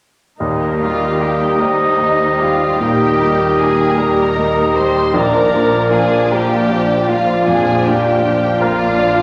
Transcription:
0.40 grand piano D#2, double bass section D#2, cello section D#3, french horn section G3 D#4, bassoon G3, viola section A#3 D#4, clarinet A#4, oboe D#5
0.80 viola section G3 G4, grand piano D#4, violin section F4 F5
1.20 viola section A#3 D#4, grand piano G4, violin section G4 G5
1.60 double bass section D#2, viola section G3 G4, bassoon G3, violin section D#4 D#5, grand piano A#4, clarinet C5, oboe D#5
1.99 viola section A#3 D#4, grand piano D#5
2.40 viola section G3 G4, violin section F4 F5, grand piano G4
2.80 double bass section D#2, grand piano A#2, cello section D#3, bassoon G3, viola section A#3 D#4, violin section G4 G5, clarinet A#4, oboe D#5
3.19 viola section G3 G4, grand piano D#4
3.59 viola section A#3 D#4, grand piano G4, violin section G#4 G#5
3.98 double bass section D#2, cello section D#3, viola section G3 G4, bassoon G3, clarinet G4, grand piano A#4, violin section A#4 A#5, oboe D#5
4.36 viola section A#3 D#4, grand piano D#5
4.74 viola section G3 G4, grand piano G4, violin section C5 C6
5.14 grand piano A#1, double bass section A#1, cello section A#2, bassoon F3, viola section F3 D4, french horn section F3 D4, violin section A#4 A#5, clarinet A#4, oboe D5
5.53 viola section A#3 F4, grand piano D4
5.91 viola section F3 D4, grand piano F4, violin section G#4 G#5
6.31 double bass section A#1, cello section A#2, viola section A#3 F4, violin section G4 G5, grand piano A#4, clarinet D5
6.71 viola section F3 D4, grand piano D5
7.08 viola section A#3 F4, grand piano F4, violin section F4 F5
7.47 double bass section A#1, grand piano F2, cello section A#2, viola section F3 D4, violin section G#4 G#5, clarinet F5
7.86 viola section A#3 F4, grand piano D4, violin section G4 G5
8.23 viola section F3 D4, grand piano F4
8.60 double bass section A#1, cello section A#2, bassoon F3, viola section A#3 F4, violin section F4 F5, grand piano A#4, oboe D5
8.98 viola section F3 D4, grand piano D5

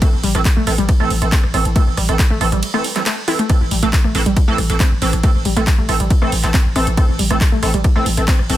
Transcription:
0.02 analog polysynth E3 C4 A4, synth arpeggio sound A3, kick, closed hi-hat, ride
0.13 808-style bass A1
0.23 808-style bass A1, synth arpeggio sound G3, open hi-hat
0.35 808-style bass A1, analog polysynth E3 C4 A4, cross-stick, closed hi-hat
0.45 kick, clap, closed hi-hat, ride
0.57 808-style bass A1, synth arpeggio sound A3
0.67 808-style bass A1, analog polysynth E3 C4 A4, open hi-hat
0.78 808-style bass A1, synth arpeggio sound G3, closed hi-hat
0.89 kick, cross-stick, closed hi-hat, ride
1.00 808-style bass A1, analog polysynth E3 C4 A4, synth arpeggio sound A3
1.10 808-style bass A1, open hi-hat
1.22 808-style bass A1, analog polysynth E3 C4 A4, closed hi-hat
1.32 synth arpeggio sound C4, kick, clap, closed hi-hat, ride
1.43 808-style bass A1, cross-stick
1.54 808-style bass A1, analog polysynth E3 C4 A4, synth arpeggio sound C4, open hi-hat
1.65 808-style bass A1, closed hi-hat
1.76 analog polysynth E3 C4 A4, synth arpeggio sound A3, kick, closed hi-hat, ride
1.87 808-style bass A1
1.97 808-style bass A1, synth arpeggio sound G3, cross-stick, open hi-hat
2.09 808-style bass A1, analog polysynth E3 C4 A4, closed hi-hat
2.19 kick, clap, closed hi-hat, ride
2.30 808-style bass A1, synth arpeggio sound A3
2.41 808-style bass A1, analog polysynth E3 C4 A4, open hi-hat
2.52 808-style bass A1, synth arpeggio sound G3, cross-stick, closed hi-hat
2.63 closed hi-hat, ride
2.74 analog polysynth E3 C4 A4, synth arpeggio sound A3
2.84 open hi-hat
2.96 analog polysynth E3 C4 A4, synth arpeggio sound G3, clap, closed hi-hat
3.06 synth arpeggio sound A3, cross-stick, clap, closed hi-hat, ride
3.28 analog polysynth E3 C4 A4, synth arpeggio sound E4, open hi-hat
3.39 synth arpeggio sound A3, closed hi-hat
3.50 analog polysynth E3 C4 A4, synth arpeggio sound A3, kick, cross-stick, closed hi-hat, ride
3.61 808-style bass A1
3.71 808-style bass A1, synth arpeggio sound G3, open hi-hat
3.83 808-style bass A1, analog polysynth E3 C4 A4, synth arpeggio sound A3, closed hi-hat
3.93 kick, clap, closed hi-hat, ride
4.04 808-style bass A1, synth arpeggio sound A3, cross-stick
4.15 808-style bass A1, analog polysynth E3 C4 A4, open hi-hat
4.26 808-style bass A1, synth arpeggio sound G3, closed hi-hat
4.37 kick, closed hi-hat, ride
4.48 808-style bass A1, analog polysynth E3 C4 A4, synth arpeggio sound A3
4.58 808-style bass A1, cross-stick, open hi-hat
4.70 808-style bass A1, analog polysynth E3 C4 A4, closed hi-hat
4.80 synth arpeggio sound C4, kick, clap, closed hi-hat, ride
4.91 808-style bass A1
5.02 808-style bass A1, analog polysynth E3 C4 A4, synth arpeggio sound C4, open hi-hat
5.13 808-style bass A1, cross-stick, closed hi-hat
5.23 analog polysynth E3 C4 A4, synth arpeggio sound A3, kick, closed hi-hat, ride
5.35 808-style bass A1
5.45 808-style bass A1, synth arpeggio sound G3, open hi-hat
5.57 808-style bass A1, analog polysynth E3 C4 A4, synth arpeggio sound A3, closed hi-hat
5.67 kick, cross-stick, clap, closed hi-hat, ride
5.78 808-style bass A1, synth arpeggio sound A3
5.89 808-style bass A1, analog polysynth E3 C4 A4, open hi-hat
6.00 808-style bass A1, synth arpeggio sound G3, closed hi-hat
6.10 kick, closed hi-hat, ride
6.22 808-style bass A1, analog polysynth E3 C4 A4, synth arpeggio sound A3, cross-stick
6.32 808-style bass A1, open hi-hat
6.43 808-style bass A1, analog polysynth E3 C4 A4, clap, closed hi-hat
6.54 synth arpeggio sound C4, kick, clap, closed hi-hat, ride
6.65 808-style bass A1
6.76 808-style bass A1, analog polysynth E3 C4 A4, synth arpeggio sound C4, cross-stick, open hi-hat
6.87 808-style bass A1, closed hi-hat
6.97 analog polysynth E3 C4 A4, synth arpeggio sound A3, kick, closed hi-hat, ride
7.09 808-style bass A1
7.19 808-style bass A1, synth arpeggio sound G3, open hi-hat
7.30 808-style bass A1, analog polysynth E3 C4 A4, synth arpeggio sound A3, cross-stick, closed hi-hat
7.41 kick, clap, closed hi-hat, ride
7.52 808-style bass A1, synth arpeggio sound A3
7.63 808-style bass A1, analog polysynth E3 C4 A4, open hi-hat
7.74 808-style bass A1, synth arpeggio sound G3, closed hi-hat
7.84 kick, cross-stick, closed hi-hat, ride
7.96 808-style bass A1, analog polysynth E3 C4 A4, synth arpeggio sound A3
8.06 808-style bass A1, open hi-hat
8.17 808-style bass A1, analog polysynth E3 C4 A4, closed hi-hat
8.28 synth arpeggio sound C4, kick, clap, closed hi-hat, ride
8.39 808-style bass A1, cross-stick
8.50 808-style bass A1, analog polysynth E3 C4 A4, synth arpeggio sound C4, open hi-hat

